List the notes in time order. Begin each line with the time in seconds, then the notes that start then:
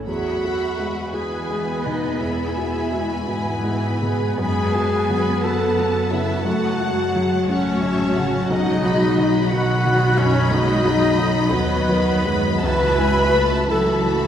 Already playing: A3 C#4 A4
0.06 E2 F#3 F#4 G#4 E5 F#5 B5
0.43 F#4 A4
0.79 G#3 B4
1.13 E3 B3 F#4 G#4 B4 G#5 B5
1.50 G#3
1.85 B2 D#4 D#5
2.20 E2 G#3 E4 G#4 E5 G#5
2.57 F#4 G#4
2.92 G#3 F#4
3.27 G#2 E3 G#3 B3 E4 F#4 B4
3.63 E3 G#3 E4
4.01 B2 G#3 G#4
4.38 F#2 F#3 G#3 B3 G#4 B4 G#5 B5
4.75 F#4 A5
5.10 F#3 B5
5.43 F#3 F#4 A4 F#5 A5
5.79 F#3
6.11 C#3 E4 E5
6.45 F#2 F#3 A3 F#4 A4 F#5
6.80 G#3 F#4
7.14 F#3 G#3
7.48 A1 A3 C#4 F#4 C#5 F#5 A5
7.82 F#3 G#3 E5
8.15 C#3 F#3 F#5
8.50 B1 G#3 D#4 D#5 F#5
8.85 F#4 B5
9.18 F#3 B5
9.51 D#3 F#3 F#4 D#5 F#5
9.85 F#3
10.18 F#2 C#4 C#5
10.51 B1 G#3 D#4 F#4 D#5
10.84 F#3 F#4 G#4
11.18 F#3 A4
11.53 D#2 F#3 B3 F#4 B4
11.89 D#3 F#3
12.25 F#2 G#3
12.62 C#2 E3 F#3 F#4 B4 E5 A5 B5
12.98 G#3 E4 G#5
13.33 A3 A5
13.68 E3 F#3 E4 F#4 A4 E5 A5 B5
14.06 E3 A3 F#4